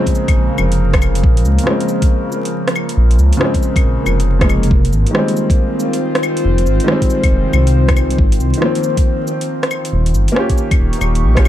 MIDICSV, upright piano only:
0, 0, Header, 1, 2, 480
1, 0, Start_track
1, 0, Tempo, 434783
1, 1360, Time_signature, 4, 2, 24, 8
1, 12677, End_track
2, 0, Start_track
2, 0, Title_t, "Upright piano"
2, 0, Program_c, 0, 0
2, 0, Note_on_c, 0, 49, 95
2, 0, Note_on_c, 0, 53, 86
2, 0, Note_on_c, 0, 56, 86
2, 0, Note_on_c, 0, 60, 101
2, 1786, Note_off_c, 0, 49, 0
2, 1802, Note_on_c, 0, 49, 85
2, 1813, Note_off_c, 0, 53, 0
2, 1827, Note_off_c, 0, 56, 0
2, 1831, Note_on_c, 0, 53, 79
2, 1841, Note_off_c, 0, 60, 0
2, 1862, Note_on_c, 0, 56, 78
2, 1889, Note_on_c, 0, 60, 92
2, 3704, Note_off_c, 0, 49, 0
2, 3721, Note_on_c, 0, 49, 93
2, 3734, Note_off_c, 0, 53, 0
2, 3750, Note_off_c, 0, 56, 0
2, 3750, Note_on_c, 0, 53, 88
2, 3763, Note_off_c, 0, 60, 0
2, 3779, Note_on_c, 0, 56, 85
2, 3809, Note_on_c, 0, 60, 98
2, 4821, Note_off_c, 0, 49, 0
2, 4835, Note_off_c, 0, 53, 0
2, 4846, Note_on_c, 0, 49, 91
2, 4850, Note_off_c, 0, 56, 0
2, 4859, Note_on_c, 0, 53, 81
2, 4865, Note_off_c, 0, 60, 0
2, 4876, Note_on_c, 0, 56, 84
2, 4890, Note_on_c, 0, 58, 97
2, 5178, Note_off_c, 0, 49, 0
2, 5184, Note_off_c, 0, 53, 0
2, 5193, Note_off_c, 0, 56, 0
2, 5200, Note_off_c, 0, 58, 0
2, 5638, Note_on_c, 0, 51, 82
2, 5664, Note_on_c, 0, 55, 77
2, 5697, Note_on_c, 0, 56, 79
2, 5726, Note_on_c, 0, 60, 92
2, 7535, Note_off_c, 0, 51, 0
2, 7552, Note_on_c, 0, 51, 93
2, 7562, Note_off_c, 0, 55, 0
2, 7579, Note_on_c, 0, 55, 83
2, 7587, Note_off_c, 0, 56, 0
2, 7601, Note_off_c, 0, 60, 0
2, 7610, Note_on_c, 0, 56, 83
2, 7639, Note_on_c, 0, 60, 105
2, 9005, Note_off_c, 0, 51, 0
2, 9019, Note_off_c, 0, 55, 0
2, 9034, Note_off_c, 0, 56, 0
2, 9049, Note_off_c, 0, 60, 0
2, 9466, Note_on_c, 0, 51, 86
2, 9496, Note_on_c, 0, 53, 76
2, 9526, Note_on_c, 0, 58, 77
2, 9555, Note_on_c, 0, 60, 97
2, 10922, Note_off_c, 0, 51, 0
2, 10937, Note_off_c, 0, 53, 0
2, 10952, Note_off_c, 0, 58, 0
2, 10967, Note_off_c, 0, 60, 0
2, 11394, Note_on_c, 0, 58, 92
2, 11421, Note_on_c, 0, 61, 89
2, 11451, Note_on_c, 0, 65, 85
2, 11478, Note_on_c, 0, 67, 101
2, 12497, Note_off_c, 0, 58, 0
2, 12511, Note_off_c, 0, 61, 0
2, 12525, Note_off_c, 0, 65, 0
2, 12532, Note_on_c, 0, 58, 96
2, 12539, Note_off_c, 0, 67, 0
2, 12547, Note_on_c, 0, 61, 83
2, 12565, Note_on_c, 0, 65, 83
2, 12577, Note_on_c, 0, 67, 97
2, 12677, Note_off_c, 0, 58, 0
2, 12677, Note_off_c, 0, 61, 0
2, 12677, Note_off_c, 0, 65, 0
2, 12677, Note_off_c, 0, 67, 0
2, 12677, End_track
0, 0, End_of_file